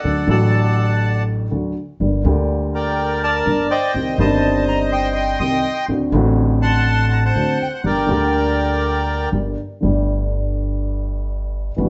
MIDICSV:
0, 0, Header, 1, 4, 480
1, 0, Start_track
1, 0, Key_signature, -2, "minor"
1, 0, Tempo, 487805
1, 31, Time_signature, 4, 2, 24, 8
1, 7712, Tempo, 493827
1, 11651, End_track
2, 0, Start_track
2, 0, Title_t, "Bandoneon"
2, 0, Program_c, 0, 23
2, 0, Note_on_c, 0, 69, 54
2, 0, Note_on_c, 0, 74, 52
2, 0, Note_on_c, 0, 78, 71
2, 280, Note_off_c, 0, 78, 0
2, 285, Note_off_c, 0, 74, 0
2, 295, Note_on_c, 0, 78, 55
2, 299, Note_on_c, 0, 81, 74
2, 300, Note_on_c, 0, 74, 54
2, 855, Note_off_c, 0, 69, 0
2, 1213, Note_off_c, 0, 78, 0
2, 1214, Note_off_c, 0, 81, 0
2, 1215, Note_off_c, 0, 74, 0
2, 2701, Note_on_c, 0, 70, 52
2, 2707, Note_on_c, 0, 74, 53
2, 2711, Note_on_c, 0, 79, 72
2, 3146, Note_off_c, 0, 79, 0
2, 3171, Note_off_c, 0, 74, 0
2, 3184, Note_on_c, 0, 81, 83
2, 3186, Note_on_c, 0, 74, 61
2, 3613, Note_off_c, 0, 70, 0
2, 3621, Note_off_c, 0, 81, 0
2, 3648, Note_on_c, 0, 79, 77
2, 3650, Note_on_c, 0, 72, 59
2, 3653, Note_on_c, 0, 75, 58
2, 3855, Note_off_c, 0, 74, 0
2, 4092, Note_off_c, 0, 79, 0
2, 4119, Note_off_c, 0, 75, 0
2, 4120, Note_off_c, 0, 72, 0
2, 4130, Note_on_c, 0, 81, 79
2, 4134, Note_on_c, 0, 75, 59
2, 4135, Note_on_c, 0, 72, 61
2, 4571, Note_off_c, 0, 81, 0
2, 4606, Note_on_c, 0, 82, 83
2, 4712, Note_off_c, 0, 82, 0
2, 4833, Note_off_c, 0, 75, 0
2, 4841, Note_on_c, 0, 84, 97
2, 4847, Note_on_c, 0, 75, 68
2, 4847, Note_on_c, 0, 79, 73
2, 5043, Note_off_c, 0, 72, 0
2, 5057, Note_off_c, 0, 84, 0
2, 5072, Note_on_c, 0, 84, 90
2, 5296, Note_off_c, 0, 84, 0
2, 5307, Note_off_c, 0, 79, 0
2, 5314, Note_on_c, 0, 87, 91
2, 5322, Note_on_c, 0, 79, 63
2, 5322, Note_on_c, 0, 84, 69
2, 5647, Note_off_c, 0, 87, 0
2, 5756, Note_off_c, 0, 75, 0
2, 5762, Note_off_c, 0, 79, 0
2, 5762, Note_off_c, 0, 84, 0
2, 6514, Note_on_c, 0, 78, 71
2, 6518, Note_on_c, 0, 81, 75
2, 6518, Note_on_c, 0, 84, 101
2, 7008, Note_off_c, 0, 84, 0
2, 7012, Note_on_c, 0, 82, 85
2, 7061, Note_off_c, 0, 82, 0
2, 7121, Note_off_c, 0, 78, 0
2, 7125, Note_off_c, 0, 81, 0
2, 7136, Note_on_c, 0, 78, 66
2, 7138, Note_on_c, 0, 72, 67
2, 7140, Note_on_c, 0, 81, 87
2, 7461, Note_off_c, 0, 81, 0
2, 7500, Note_on_c, 0, 79, 76
2, 7548, Note_off_c, 0, 79, 0
2, 7606, Note_off_c, 0, 78, 0
2, 7620, Note_on_c, 0, 78, 68
2, 7686, Note_off_c, 0, 72, 0
2, 7729, Note_off_c, 0, 78, 0
2, 7732, Note_on_c, 0, 74, 60
2, 7734, Note_on_c, 0, 70, 59
2, 7743, Note_on_c, 0, 79, 77
2, 9124, Note_off_c, 0, 74, 0
2, 9125, Note_off_c, 0, 70, 0
2, 9130, Note_off_c, 0, 79, 0
2, 11651, End_track
3, 0, Start_track
3, 0, Title_t, "Grand piano"
3, 0, Program_c, 1, 0
3, 35, Note_on_c, 1, 50, 49
3, 39, Note_on_c, 1, 38, 50
3, 40, Note_on_c, 1, 54, 38
3, 41, Note_on_c, 1, 57, 36
3, 41, Note_on_c, 1, 66, 47
3, 237, Note_off_c, 1, 38, 0
3, 237, Note_off_c, 1, 50, 0
3, 237, Note_off_c, 1, 54, 0
3, 238, Note_off_c, 1, 57, 0
3, 238, Note_off_c, 1, 66, 0
3, 266, Note_on_c, 1, 50, 68
3, 276, Note_on_c, 1, 54, 59
3, 284, Note_on_c, 1, 33, 75
3, 286, Note_on_c, 1, 45, 74
3, 293, Note_on_c, 1, 57, 61
3, 301, Note_on_c, 1, 66, 67
3, 1419, Note_off_c, 1, 50, 0
3, 1424, Note_off_c, 1, 54, 0
3, 1429, Note_off_c, 1, 33, 0
3, 1429, Note_off_c, 1, 45, 0
3, 1433, Note_off_c, 1, 57, 0
3, 1437, Note_off_c, 1, 66, 0
3, 1485, Note_on_c, 1, 50, 47
3, 1488, Note_on_c, 1, 54, 39
3, 1489, Note_on_c, 1, 38, 46
3, 1490, Note_on_c, 1, 57, 38
3, 1491, Note_on_c, 1, 66, 48
3, 1689, Note_off_c, 1, 38, 0
3, 1689, Note_off_c, 1, 54, 0
3, 1690, Note_off_c, 1, 50, 0
3, 1690, Note_off_c, 1, 57, 0
3, 1690, Note_off_c, 1, 66, 0
3, 1971, Note_on_c, 1, 50, 44
3, 1973, Note_on_c, 1, 43, 52
3, 1976, Note_on_c, 1, 55, 38
3, 1978, Note_on_c, 1, 31, 48
3, 1980, Note_on_c, 1, 58, 39
3, 1984, Note_on_c, 1, 67, 45
3, 2171, Note_off_c, 1, 50, 0
3, 2172, Note_off_c, 1, 43, 0
3, 2174, Note_off_c, 1, 55, 0
3, 2175, Note_off_c, 1, 31, 0
3, 2176, Note_off_c, 1, 58, 0
3, 2178, Note_off_c, 1, 67, 0
3, 2200, Note_on_c, 1, 50, 61
3, 2215, Note_off_c, 1, 50, 0
3, 2216, Note_on_c, 1, 55, 58
3, 2222, Note_on_c, 1, 38, 72
3, 2223, Note_on_c, 1, 50, 73
3, 2225, Note_on_c, 1, 58, 61
3, 2241, Note_on_c, 1, 67, 72
3, 3351, Note_off_c, 1, 55, 0
3, 3354, Note_off_c, 1, 38, 0
3, 3355, Note_off_c, 1, 50, 0
3, 3356, Note_off_c, 1, 58, 0
3, 3364, Note_off_c, 1, 67, 0
3, 3412, Note_on_c, 1, 50, 46
3, 3414, Note_on_c, 1, 43, 51
3, 3415, Note_on_c, 1, 31, 52
3, 3416, Note_on_c, 1, 55, 39
3, 3418, Note_on_c, 1, 58, 40
3, 3420, Note_on_c, 1, 67, 48
3, 3610, Note_off_c, 1, 50, 0
3, 3611, Note_off_c, 1, 43, 0
3, 3612, Note_off_c, 1, 31, 0
3, 3613, Note_off_c, 1, 55, 0
3, 3613, Note_off_c, 1, 58, 0
3, 3614, Note_off_c, 1, 67, 0
3, 3887, Note_on_c, 1, 55, 42
3, 3888, Note_on_c, 1, 51, 44
3, 3889, Note_on_c, 1, 36, 50
3, 3891, Note_on_c, 1, 48, 53
3, 3891, Note_on_c, 1, 67, 50
3, 3894, Note_on_c, 1, 60, 38
3, 4087, Note_off_c, 1, 51, 0
3, 4087, Note_off_c, 1, 55, 0
3, 4088, Note_off_c, 1, 36, 0
3, 4089, Note_off_c, 1, 48, 0
3, 4089, Note_off_c, 1, 67, 0
3, 4090, Note_off_c, 1, 60, 0
3, 4105, Note_on_c, 1, 51, 69
3, 4122, Note_on_c, 1, 55, 59
3, 4126, Note_on_c, 1, 43, 81
3, 4127, Note_on_c, 1, 31, 75
3, 4138, Note_on_c, 1, 60, 61
3, 4149, Note_on_c, 1, 67, 70
3, 5247, Note_off_c, 1, 51, 0
3, 5255, Note_off_c, 1, 55, 0
3, 5257, Note_off_c, 1, 43, 0
3, 5258, Note_off_c, 1, 31, 0
3, 5263, Note_off_c, 1, 60, 0
3, 5268, Note_off_c, 1, 67, 0
3, 5315, Note_on_c, 1, 51, 45
3, 5315, Note_on_c, 1, 55, 42
3, 5315, Note_on_c, 1, 60, 42
3, 5316, Note_on_c, 1, 48, 56
3, 5318, Note_on_c, 1, 36, 50
3, 5318, Note_on_c, 1, 67, 52
3, 5515, Note_off_c, 1, 51, 0
3, 5515, Note_off_c, 1, 55, 0
3, 5515, Note_off_c, 1, 60, 0
3, 5516, Note_off_c, 1, 36, 0
3, 5516, Note_off_c, 1, 48, 0
3, 5516, Note_off_c, 1, 67, 0
3, 5796, Note_on_c, 1, 57, 42
3, 5796, Note_on_c, 1, 60, 44
3, 5798, Note_on_c, 1, 50, 54
3, 5798, Note_on_c, 1, 66, 49
3, 5799, Note_on_c, 1, 38, 53
3, 5994, Note_off_c, 1, 57, 0
3, 5994, Note_off_c, 1, 60, 0
3, 5996, Note_off_c, 1, 38, 0
3, 5996, Note_off_c, 1, 50, 0
3, 5996, Note_off_c, 1, 66, 0
3, 6019, Note_on_c, 1, 50, 69
3, 6034, Note_on_c, 1, 57, 62
3, 6035, Note_on_c, 1, 33, 83
3, 6037, Note_on_c, 1, 45, 84
3, 6048, Note_on_c, 1, 60, 62
3, 6057, Note_on_c, 1, 66, 75
3, 7164, Note_off_c, 1, 50, 0
3, 7171, Note_off_c, 1, 33, 0
3, 7171, Note_off_c, 1, 57, 0
3, 7172, Note_off_c, 1, 45, 0
3, 7178, Note_off_c, 1, 60, 0
3, 7183, Note_off_c, 1, 66, 0
3, 7233, Note_on_c, 1, 38, 52
3, 7237, Note_on_c, 1, 50, 53
3, 7238, Note_on_c, 1, 57, 40
3, 7240, Note_on_c, 1, 60, 41
3, 7242, Note_on_c, 1, 66, 49
3, 7433, Note_off_c, 1, 38, 0
3, 7435, Note_off_c, 1, 57, 0
3, 7436, Note_off_c, 1, 50, 0
3, 7436, Note_off_c, 1, 60, 0
3, 7438, Note_off_c, 1, 66, 0
3, 7713, Note_on_c, 1, 55, 40
3, 7715, Note_on_c, 1, 43, 52
3, 7715, Note_on_c, 1, 50, 43
3, 7715, Note_on_c, 1, 58, 39
3, 7716, Note_on_c, 1, 31, 50
3, 7719, Note_on_c, 1, 67, 47
3, 7912, Note_off_c, 1, 55, 0
3, 7914, Note_off_c, 1, 31, 0
3, 7914, Note_off_c, 1, 43, 0
3, 7914, Note_off_c, 1, 50, 0
3, 7914, Note_off_c, 1, 58, 0
3, 7916, Note_off_c, 1, 67, 0
3, 7934, Note_on_c, 1, 50, 80
3, 7945, Note_on_c, 1, 55, 62
3, 7954, Note_on_c, 1, 38, 75
3, 7958, Note_on_c, 1, 58, 61
3, 7975, Note_on_c, 1, 67, 74
3, 9089, Note_off_c, 1, 55, 0
3, 9091, Note_off_c, 1, 50, 0
3, 9094, Note_off_c, 1, 38, 0
3, 9096, Note_off_c, 1, 58, 0
3, 9104, Note_off_c, 1, 67, 0
3, 9154, Note_on_c, 1, 43, 49
3, 9157, Note_on_c, 1, 50, 42
3, 9157, Note_on_c, 1, 58, 37
3, 9159, Note_on_c, 1, 55, 37
3, 9160, Note_on_c, 1, 31, 48
3, 9161, Note_on_c, 1, 67, 46
3, 9358, Note_off_c, 1, 43, 0
3, 9359, Note_off_c, 1, 50, 0
3, 9360, Note_off_c, 1, 55, 0
3, 9360, Note_off_c, 1, 58, 0
3, 9361, Note_off_c, 1, 31, 0
3, 9362, Note_off_c, 1, 67, 0
3, 9626, Note_on_c, 1, 50, 51
3, 9642, Note_on_c, 1, 55, 49
3, 9648, Note_on_c, 1, 31, 60
3, 9648, Note_on_c, 1, 43, 64
3, 9657, Note_on_c, 1, 57, 45
3, 9668, Note_on_c, 1, 67, 58
3, 11449, Note_off_c, 1, 50, 0
3, 11457, Note_off_c, 1, 55, 0
3, 11460, Note_off_c, 1, 31, 0
3, 11460, Note_off_c, 1, 43, 0
3, 11464, Note_off_c, 1, 57, 0
3, 11470, Note_off_c, 1, 67, 0
3, 11529, Note_on_c, 1, 52, 57
3, 11540, Note_on_c, 1, 55, 49
3, 11545, Note_on_c, 1, 43, 62
3, 11550, Note_on_c, 1, 31, 61
3, 11554, Note_on_c, 1, 59, 48
3, 11569, Note_on_c, 1, 66, 60
3, 11651, Note_off_c, 1, 31, 0
3, 11651, Note_off_c, 1, 43, 0
3, 11651, Note_off_c, 1, 52, 0
3, 11651, Note_off_c, 1, 55, 0
3, 11651, Note_off_c, 1, 59, 0
3, 11651, Note_off_c, 1, 66, 0
3, 11651, End_track
4, 0, Start_track
4, 0, Title_t, "Upright bass"
4, 0, Program_c, 2, 32
4, 39, Note_on_c, 2, 38, 56
4, 237, Note_off_c, 2, 38, 0
4, 271, Note_on_c, 2, 33, 88
4, 1422, Note_off_c, 2, 33, 0
4, 1491, Note_on_c, 2, 38, 52
4, 1690, Note_off_c, 2, 38, 0
4, 1969, Note_on_c, 2, 31, 56
4, 2170, Note_off_c, 2, 31, 0
4, 2209, Note_on_c, 2, 38, 83
4, 3348, Note_off_c, 2, 38, 0
4, 3404, Note_on_c, 2, 31, 58
4, 3606, Note_off_c, 2, 31, 0
4, 3881, Note_on_c, 2, 36, 55
4, 4084, Note_off_c, 2, 36, 0
4, 4117, Note_on_c, 2, 31, 85
4, 5252, Note_off_c, 2, 31, 0
4, 5312, Note_on_c, 2, 36, 59
4, 5514, Note_off_c, 2, 36, 0
4, 5790, Note_on_c, 2, 38, 61
4, 5991, Note_off_c, 2, 38, 0
4, 6025, Note_on_c, 2, 33, 91
4, 7167, Note_off_c, 2, 33, 0
4, 7234, Note_on_c, 2, 38, 59
4, 7433, Note_off_c, 2, 38, 0
4, 7715, Note_on_c, 2, 31, 60
4, 7914, Note_off_c, 2, 31, 0
4, 7959, Note_on_c, 2, 38, 84
4, 9096, Note_off_c, 2, 38, 0
4, 9162, Note_on_c, 2, 31, 55
4, 9362, Note_off_c, 2, 31, 0
4, 9646, Note_on_c, 2, 31, 65
4, 11459, Note_off_c, 2, 31, 0
4, 11545, Note_on_c, 2, 31, 74
4, 11651, Note_off_c, 2, 31, 0
4, 11651, End_track
0, 0, End_of_file